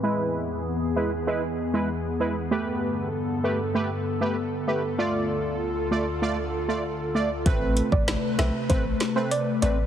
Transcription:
Already playing: E3
0.03 E2 G#3 B3 E4 G#4 B4
0.96 G#3 E4 B4
1.27 G#3 E4 B4
1.74 G#3 E4 B4
2.20 G#3 E4 B4
2.51 G2 D3 A3 G4 A4 B4
3.44 A3 G4 B4
3.75 A3 G4 B4
4.21 A3 G4 B4
4.67 A3 G4 B4
4.98 D2 A3 F4 D5
5.91 A3 F4 D5
6.22 A3 F4 D5
6.68 A3 F4 D5
7.15 A3 F4 D5
7.46 A1 C3 A3 C4 B4, kick, closed hi-hat
7.77 closed hi-hat
7.92 A1 D5, kick
8.08 snare, closed hi-hat
8.38 B1 A3 C4 B4 E5, snare, closed hi-hat
8.69 A1 A3 C4 B4 C5, kick, closed hi-hat
9.00 snare, closed hi-hat
9.16 A3 C4 B4 C5
9.31 D5, closed hi-hat
9.62 A1 A3 C4 B4 D5, closed hi-hat

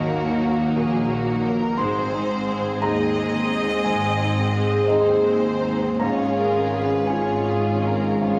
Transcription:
Already playing: D#2 D#3 F#3 A#3 F#4 A#4 D#5
0.08 A#3
0.25 D#4
0.42 A#3 A#4
0.59 D#4
0.76 A#1 A#2 A#3 F#4 G#4 A#4
0.94 D#4
1.11 A#3 F#4 F#5
1.28 D#4
1.45 A#3 A#4
1.62 D#4
1.78 G#1 G#2 G#3 C4 G#4 C5 C6
1.97 C4
2.13 C4 D#4
2.30 C4
2.48 G#3 G#4
2.64 C4
2.81 D#2 C4 D#4 G#4 C5 D#5 A#5
2.98 C4
3.15 G#3 D#5
3.33 C4
3.50 D#4 C5
3.69 C4
3.85 G#1 G#2 G#3 G#5
4.03 C4
4.19 C4 D#4
4.38 C4
4.53 G#3 G#4
4.72 C4
4.88 D#2 C4 D#4 G#4 C5 D#5
5.07 C4
5.24 G#3 D#5
5.44 C4
5.62 D#4 C5
5.82 C4
5.99 G#1 G#2 G#3 C#4 F4 G#4 C#5 A#5
6.37 C#4 A#4
6.72 G#4 B4
7.07 G#3 C#4 F4 G#4 C#5 G#5
7.45 G#4 F5
7.83 A#4 C#5
8.21 G#2 G#3 C#4 F4 G#4 C#5 F5

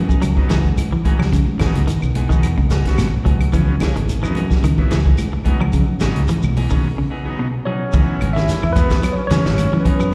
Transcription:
Already playing: F#2
0.09 B3 D#4 G#4, kick, low conga, shekere
0.22 C#2 F#3, closed hi-hat, claves, shekere
0.37 C#3 F#3 B3 D#4, kick
0.49 C#2 E3 B3 D#4 G#4, snare, closed hi-hat, high conga, shekere
0.65 kick, shekere
0.77 closed hi-hat, high conga, claves, shekere
0.92 E3
1.04 C#3 E3 F#3 B3 D#4 G#4, kick, closed hi-hat, high conga, shekere
1.19 C#2 F#3, snare, low conga, claves
1.32 C#3, kick, closed hi-hat, low conga, shekere
1.47 high conga
1.59 G#1 C#3 E3 F#3 B3 D#4 G#4, kick, snare, closed hi-hat, high conga, claves, shekere
1.75 C#2, closed hi-hat, shekere
1.87 D#3, closed hi-hat, shekere
2.02 B1, claves, shekere
2.15 E3 B3 D#4 G#4, closed hi-hat, high conga, shekere
2.29 C#3 D#3 F#3 B3 D#4 G#4, kick, low conga, shekere
2.43 E2, closed hi-hat, claves, shekere
2.58 C#3, kick, high conga
2.70 C#2 E3 B3 D#4 G#4, snare, closed hi-hat, high conga, shekere
2.85 C#3 F#3 B3 F#4, kick, snare, closed hi-hat, shekere
2.98 G#1 B2, snare, closed hi-hat, high conga, claves, shekere
3.25 C#2 E3 F#3 B3 D#4 G#4, kick, closed hi-hat, high conga, shekere
3.40 closed hi-hat, low conga, claves
3.52 C#2 C#3 E3 F#3 B3 C#4, kick, closed hi-hat, low conga, shekere
3.80 C#3 E3 B3 D#4 G#4, kick, snare, closed hi-hat, high conga, claves, shekere
3.96 G#1 D#3, closed hi-hat, shekere
4.09 closed hi-hat, shekere
4.23 F#2 C#3 E3 F#3 B3 D#4, claves, shekere
4.35 E3 B3 D#4 G#4, closed hi-hat, high conga, shekere
4.50 B3 D#4 G#4, kick, snare, low conga, shekere
4.63 C#2 D#3, closed hi-hat, claves, shekere
4.78 C#3 F#3 B3 E4, kick
4.90 C#2 E3 B3 D#4 G#4, snare, closed hi-hat, high conga, shekere
5.04 B3 D#4 G#4, kick, shekere
5.18 closed hi-hat, high conga, claves, shekere
5.33 muted clean electric guitar stroke
5.44 C#3 E3 F#3 B3 D#4 G#4, kick, closed hi-hat, high conga, shekere
5.60 C#2 F#3, low conga, claves
5.72 C#3, kick, closed hi-hat, low conga, shekere
6.00 G#1 C#3 E3 F#3 B3 D#4 G#4, snare, closed hi-hat, high conga, claves, shekere
6.16 C#2, closed hi-hat, shekere
6.28 E3, closed hi-hat, shekere
6.42 B1, high conga, claves, shekere
6.56 E3 B3 D#4 G#4, open hi-hat, high conga, shekere
6.70 C#3 D#3 F#3 B3 C#4 D#4 G#4, kick, shekere
6.98 C#3
7.10 E3 B3 D#4 G#4
7.25 C#3 F#3 B3 D#4 G#4
7.39 B2
7.65 E3 F#3 B3 C#4 D#4 G#4 C#5
7.93 C#2 C#3 E3 F#3 B3 D#4 E4 G#4, kick, closed hi-hat, shekere
8.20 G#1 E3 B3 D#4 G#4, closed hi-hat, high conga, claves, shekere
8.33 D#3 B3 D#4 E4 G#4 E5, snare, shekere
8.49 snare, closed hi-hat, shekere
8.63 E2, muted clean electric guitar stroke, claves
8.73 C#3 E3 F#3 B3 D#4 E4 G#4 B4, kick, closed hi-hat, high conga, low conga, shekere
8.90 kick, snare, closed hi-hat, shekere
9.03 F#3, closed hi-hat, claves, shekere
9.13 C#5
9.17 C#4
9.27 C#3 E3 B3 C#4 D#4 G#4 C#5, snare, closed hi-hat, shekere
9.31 high conga
9.45 G#1 C#3 F#3 B3 E4, snare, shekere
9.58 closed hi-hat, high conga, claves, shekere
9.73 F#2 E3
9.80 B4
9.84 E3 B3 D#4 G#4, kick, closed hi-hat, low conga, shekere
9.99 F#3 B3 D#4 G#4, claves, shekere

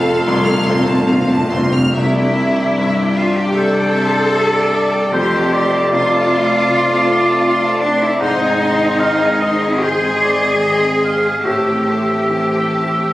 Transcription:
Already playing: F1 F2 F3 C4 F4 A4 F5
0.01 A5
0.06 F2
0.14 F2
0.22 F2 C6
0.27 C2 F2
0.37 F2
0.45 F2 F6
0.55 F2
0.63 F2 C6
0.69 F2 C4 F4
0.80 F2
0.85 F2 A5
0.95 F2
1.04 F2 F5
1.10 F2 C4 F4
1.19 F2
1.25 F2
1.30 A5
1.34 F2
1.42 F2
1.51 F2 C6
1.56 F2 C4 F4
1.67 F2
1.73 F2 F6
1.83 F2
1.94 C2 C3 G3 C4 D4 E4 E5
1.98 D5
2.15 D4 D5 G5
2.24 C4
2.33 D5 E5
2.38 C4
2.51 D5
2.56 D4 D5 G5
2.76 G2 C4 C5 D5 E5
2.96 D4 D5 G5
3.04 D5
3.15 C4 F4 D5 E5
3.31 G4 D5
3.36 D4 G4 G5
3.53 G3 C4 A4 C5 D5 E5
3.72 D5
3.77 D4 G5
3.84 C4
3.93 C4 D5 E5
4.10 D5
4.14 D4 D5 G5
4.31 C4 C5 E5
4.36 D5 E5
4.51 D4 D5 G5
4.61 D5
4.70 C4 E5
4.74 D5
4.87 G4
4.92 D4 D5 G5
5.12 F1 F2 A3 C4 G4 C5
5.16 C6
5.31 C4 A4 A5
5.39 C4
5.53 A3 C5 D5 C6
5.65 C5
5.71 C4 A4
5.75 A5
5.91 C3 A3 F4 A4 C5 C6
6.10 C4 A4
6.14 C5 A5
6.29 A3 C5
6.34 C6
6.43 A4
6.49 C4 A4
6.54 A5
6.67 C3 A3 C5
6.72 C6
6.87 C4 A4 A5
6.92 C4
7.06 A3 C5 C6
7.17 C5
7.25 C4 A4 A5
7.42 A3 A4 C5
7.48 C6
7.63 C4 A4 A5
7.68 C5
7.81 A3 D4 C5
7.86 C6
7.95 A4
8.00 C4 E4 A4
8.04 A5
8.18 G#1 G#2 G#3 D#4 C5
8.23 C6
8.37 D#5
8.42 C4 G#5
8.56 C5
8.60 D#4 C6
8.72 C5
8.78 C4 D#5 G#5
8.98 D#3 D#4 G#4 C5 F5 C6
9.18 C4 D#5 G#5
9.26 C5
9.40 D#4 C5 D#5 C6
9.54 G#4
9.61 C4 D#5 G#5
9.81 D#3 D#4 G#4 C5 C6
10.02 C4 D#5 G#5
10.09 C4
10.20 D#4 C5 D5 C6
10.35 C5
10.41 C4 D#5 G#5
10.61 D#4 G#4 C5 D#5 C6
10.82 C4 D#5 G#5
10.88 C5
11.01 D#4 C5 F5 C6
11.16 G#4
11.23 C4 D#5 G#5
11.42 A1 A2 A3 C4 G4 E5 A5
11.46 A3 C5
11.64 C4 A4 G5
11.72 C4
11.86 A3 C5 A5
12.00 C5
12.06 C4 A4 G5
12.28 E3 A3 E4 A5
12.32 C5
12.49 C4 G5
12.53 A4 C5
12.69 A3 C5 A5
12.84 E4
12.91 C4 A4 G5

